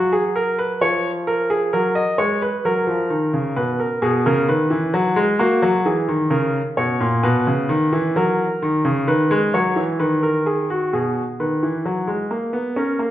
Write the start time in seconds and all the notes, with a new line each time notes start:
Already playing: F#3 F#4
0.12 G#4
0.36 A#4
0.59 B4
0.81 F3 C#5
1.27 A#4
1.50 G#4
1.73 F#3 A#4
1.95 D#5
2.18 G#3 C#5
2.42 B4
2.65 F#3 A#4
2.87 F3
3.10 D#3
3.33 C#3
3.56 B2 B4
3.80 A#4
4.02 B2 G#4
4.26 C#3 A#4
4.49 D#3 B4
4.71 E3
4.94 F#3
5.16 G#3
5.39 A#3 F#4
5.62 F#3
5.86 E3 G#4
6.08 D#3
6.30 C#3 A#4
6.77 B2 C#5
7.01 A#2
7.23 B2 B4
7.47 C#3
7.69 D#3
7.93 E3
8.16 F#3 A#4
8.62 D#3
8.85 C#3
9.07 D#3 B4
9.31 G#3
9.54 F#3 C#5
9.76 E3
9.99 D#3 B4
10.23 A#4
10.46 G#4
10.70 F#4
10.93 B2 G#4
11.40 D#3 B4
11.63 E3
11.86 F#3
12.07 G#3
12.31 A#3
12.53 B3
12.76 C#4 A#4
12.99 A#3